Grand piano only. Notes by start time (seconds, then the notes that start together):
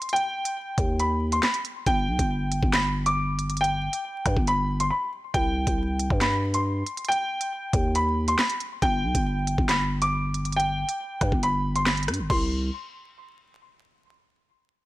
0.13 G5
1.00 B5
1.33 C6
1.43 B5
1.87 G5
2.73 B5
3.06 D6
3.61 G5
4.48 B5
4.80 C6
4.90 B5
5.34 G5
6.21 B5
6.54 C6
7.08 G5
7.96 B5
8.28 C6
8.39 B5
8.82 G5
9.69 B5
10.02 D6
10.56 G5
11.43 B5
11.76 C6
11.86 B5
12.30 C6